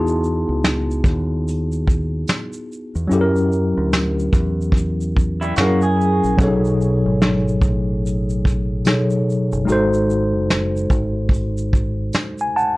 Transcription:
Already playing: fingered electric bass E2, tine electric piano B3 D#4 E4 F#4 G#4 A5 C6
0.07 shaker
0.24 shaker
0.49 fingered electric bass C#2
0.64 snare, closed hi-hat, tambourine, shaker
0.91 shaker
1.04 fingered electric bass D#2, kick, shaker
1.48 closed hi-hat, shaker
1.72 shaker
1.88 kick, shaker
2.28 snare, closed hi-hat, tambourine, shaker
2.53 shaker
2.72 shaker
2.95 fingered electric bass E2, shaker
3.08 fingered electric bass F#2, tine electric piano F#3 C#4 E4, closed hi-hat, shaker
3.13 tine electric piano G4 A4
3.21 tine electric piano A#4
3.36 shaker
3.52 shaker
3.78 fingered electric bass D2
3.93 snare, tambourine, shaker
4.19 shaker
4.33 fingered electric bass E2, kick, shaker
4.61 shaker
4.72 kick
4.77 closed hi-hat, shaker
5.01 shaker
5.16 kick, shaker
5.41 clean electric guitar G3 E4, shaker
5.56 fingered electric bass F#2, tine electric piano F#3 C#4 E4, clean electric guitar A#3 F#4, snare, closed hi-hat, tambourine, shaker
5.60 tine electric piano G#4 A#4
5.82 clean electric guitar G#4, shaker
6.01 shaker
6.24 fingered electric bass A#1, shaker
6.37 fingered electric bass B1, tine electric piano B2 F#3 C#4, kick, closed hi-hat, shaker
6.41 tine electric piano G#4 A4 C#5
6.46 tine electric piano D#4
6.65 shaker
6.81 shaker
7.06 fingered electric bass G#1
7.22 snare, closed hi-hat, tambourine, shaker
7.48 shaker
7.62 fingered electric bass A1, kick, shaker
8.06 closed hi-hat, shaker
8.30 shaker
8.45 kick, shaker
8.85 tine electric piano B2 F#3 D#4 G#4 A4 C#5, snare, closed hi-hat, tambourine, shaker
9.10 shaker
9.30 shaker
9.52 fingered electric bass F#1, shaker
9.65 fingered electric bass G#1, tine electric piano G#3 D#4 F#4, closed hi-hat, shaker
9.71 tine electric piano A4 C5
9.94 shaker
10.10 shaker
10.34 fingered electric bass F#1
10.50 snare, closed hi-hat, tambourine, shaker
10.77 shaker
10.90 fingered electric bass G#1, kick, shaker
11.29 kick
11.34 closed hi-hat, shaker
11.58 shaker
11.73 kick, shaker
12.13 snare, closed hi-hat, tambourine, shaker
12.39 tine electric piano G#5, shaker
12.56 tine electric piano F#5 A5, shaker

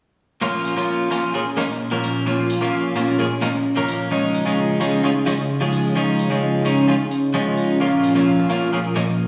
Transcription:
0.41 clean electric guitar A#2 F3 A#3 C#4 F4, analog synth pad A#2 A#3 C#4 F4 F5
0.65 open hi-hat
0.76 clean electric guitar A#2 F3 A#3 C#4 F4
1.10 clean electric guitar A#2 F3 A#3 C#4 F4, open hi-hat
1.34 clean electric guitar A#2 F3 A#3 C#4 G#4
1.57 clean electric guitar A#2 F3 A#3 C#4 D#4, open hi-hat
1.91 clean electric guitar A#2 F3 A#3 C#4 A#4
2.04 open hi-hat
2.26 clean electric guitar A#2 F3 A#3 C#4 F4, analog synth pad D#5
2.50 open hi-hat
2.61 clean electric guitar A#2 F3 A#3 C#4 F4
2.95 clean electric guitar A#2 F3 A#3 C#4 F4, open hi-hat
3.18 clean electric guitar A#2 F3 A#3 C#4 G#4
3.41 clean electric guitar A#2 F3 A#3 C#4 D#4, open hi-hat
3.76 clean electric guitar A#2 F3 A#3 C#4 A#4
3.88 open hi-hat
4.11 analog synth pad C#3 D#4 G#4 F5, clean electric guitar F3 G#3 C#4 D#4
4.34 open hi-hat
4.45 clean electric guitar F3 G#3 C#4 D#4
4.80 clean electric guitar F3 G#3 C#4 D#4, open hi-hat
5.03 clean electric guitar F3 G#3 C#4 F4
5.26 clean electric guitar F3 G#3 C#4 D#4, open hi-hat
5.61 clean electric guitar F3 G#3 C#4 G#4
5.73 open hi-hat
5.95 clean electric guitar F3 G#3 C#4 D#4
6.19 open hi-hat
6.30 clean electric guitar F3 G#3 C#4 D#4
6.65 clean electric guitar F3 G#3 C#4 D#4, open hi-hat
6.88 clean electric guitar F3 G#3 C#4 F4
7.11 open hi-hat
7.34 clean electric guitar F3 G#3 C#4 D#4
7.57 open hi-hat
7.80 clean electric guitar A#2 F3 A#3 C#4 F4, analog synth pad A#2 F3 A#4
8.04 open hi-hat
8.15 clean electric guitar A#2 F3 A#3 C#4 F4
8.49 clean electric guitar A#2 F3 A#3 C#4 F4, open hi-hat
8.72 clean electric guitar A#2 F3 A#3 C#4 G#4
8.95 clean electric guitar A#2 F3 A#3 C#4 D#4, open hi-hat

